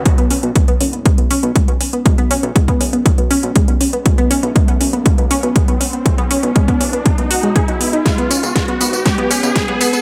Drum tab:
HH |xxoxxxoxxxoxxxox|xxoxxxoxxxoxxxox|xxoxxxoxxxoxxxox|xxoxxxoxxxo-xxox|
TB |----------------|----------------|----------------|----------------|
SD |----------------|----------------|----------------|----------------|
BD |o---o---o---o---|o---oo--o---o---|o---o---o---o---|o---oo--o---o---|

HH |xxoxxxoxxxoxxxox|
TB |x-xxx-xxx-xxx-xx|
SD |o---o---o---o---|
BD |o---o---o---o---|